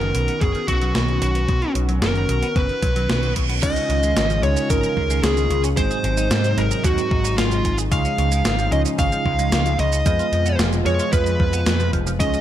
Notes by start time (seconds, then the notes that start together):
Already playing: D#3 B3 C#4 F#4 A#4
0.01 D#3, closed hi-hat
0.15 B1 B2, closed hi-hat
0.28 B3, closed hi-hat
0.41 F#1 B2 G#4, kick, closed hi-hat
0.55 D#3, closed hi-hat
0.68 B1 F#3 F#4, kick, closed hi-hat
0.81 F#3, closed hi-hat
0.95 B1 B2, snare, closed hi-hat
1.08 B2, closed hi-hat
1.22 B1 B2 F#4, closed hi-hat
1.35 B3, closed hi-hat
1.48 B1 B2, kick, closed hi-hat
1.62 B3, closed hi-hat
1.75 B1 B2, closed hi-hat
1.89 F#3, closed hi-hat
2.02 F#1 B2 A#4, snare, closed hi-hat
2.15 D#3, closed hi-hat
2.29 B1 B2, closed hi-hat
2.42 B3, closed hi-hat
2.56 F#1 B2 B4, kick, closed hi-hat, reverse cymbal
2.69 D#3, closed hi-hat
2.82 B1 F#3, kick, closed hi-hat
2.96 F#3, closed hi-hat
3.09 B1 B2, snare, closed hi-hat
3.23 B2, closed hi-hat
3.36 B1 B2, kick, closed hi-hat
3.49 B3, closed hi-hat
3.63 C#2 C#3 D#3 G#3 C#4 D#4 F4 G#4 D#5, kick, closed hi-hat, crash, shaker
3.76 C#4, closed hi-hat, shaker
3.90 C#2 C#3, closed hi-hat
4.03 G#3, closed hi-hat, shaker
4.16 G#1 C#3, snare, closed hi-hat, shaker
4.30 F3, closed hi-hat, shaker
4.43 C#2 C#3 G#3 C#4 D#4 F4 G#4 C#5, closed hi-hat
4.57 C#4, closed hi-hat, shaker
4.70 G#1 C#3 A#4, kick, closed hi-hat, shaker
4.83 F3, closed hi-hat, shaker
4.97 C#2 G#3, kick
5.10 G#3, closed hi-hat, shaker
5.23 C#2 C#3 G#4, snare, closed hi-hat, shaker
5.37 C#3, closed hi-hat, shaker
5.50 C#2 C#3, closed hi-hat
5.64 C#4, closed hi-hat, shaker
5.77 G#1 G#2 C3 F#3 G#3 C4 D#4 F#4 G#4 C5, kick, closed hi-hat, shaker
5.91 G#4, closed hi-hat, shaker
6.04 G#1 G#3, closed hi-hat
6.17 D#4, closed hi-hat, shaker
6.31 G#2 G#3, snare, closed hi-hat, shaker
6.44 C4, closed hi-hat, shaker
6.57 G#1 G#2 F#3 G#3 C4 D#4 A#4, closed hi-hat
6.71 G#4, closed hi-hat, shaker
6.84 D#2 G#3 F#4, kick, closed hi-hat, shaker
6.98 C4, closed hi-hat, shaker
7.11 G#1 D#4, kick
7.24 D#4, closed hi-hat, shaker
7.38 G#1 G#3 F4, snare, closed hi-hat, shaker
7.51 G#3, closed hi-hat, shaker
7.64 G#1 G#3, kick, closed hi-hat
7.78 G#4, closed hi-hat, shaker
7.92 C#2 C#3 F3 G#3 C#4 D#4 F4 G#4 F5, kick, closed hi-hat, shaker
8.05 C#4, closed hi-hat, shaker
8.18 C#2 C#3, closed hi-hat
8.32 G#3, closed hi-hat, shaker
8.45 G#1 C#3, snare, closed hi-hat, shaker
8.59 F3, closed hi-hat, shaker
8.72 C#2 C#3 G#3 C#4 D#4 F4 G#4 D#5, closed hi-hat
8.85 C#4, closed hi-hat, shaker
8.99 G#1 C#3 F5, kick, closed hi-hat, shaker
9.12 F3, closed hi-hat, shaker
9.26 C#2 G#3, kick
9.39 G#3, closed hi-hat, shaker
9.52 C#2 C#3, snare, closed hi-hat, shaker
9.66 C#3, closed hi-hat, shaker
9.79 C#2 C#3 D#5, closed hi-hat
9.92 C#4, closed hi-hat, shaker
10.06 F2 B2 F3 G#3 B3 F4 G#4 B4 D#5, kick, closed hi-hat, shaker
10.19 F4, closed hi-hat, shaker
10.32 F2 F3, closed hi-hat
10.46 B3, closed hi-hat, shaker
10.59 F1 F3, snare, closed hi-hat, shaker
10.73 G#3, closed hi-hat, shaker
10.86 F2 F3 G#3 B3 F4 G#4 C#5 D#5, closed hi-hat
10.99 F4, closed hi-hat, shaker
11.13 F2 F3 B4, kick, closed hi-hat, shaker
11.26 G#3, closed hi-hat, shaker
11.40 F2 F3, kick
11.53 B3, closed hi-hat, shaker
11.66 F2 F3, snare, closed hi-hat, shaker
11.80 F3, closed hi-hat, shaker
11.93 F1 F3, kick, closed hi-hat
12.07 F3, closed hi-hat, shaker
12.20 C#2 C#3 G#3 C#4 D#4 F4 G#4 D#5, kick, closed hi-hat, shaker
12.33 C#4, closed hi-hat, shaker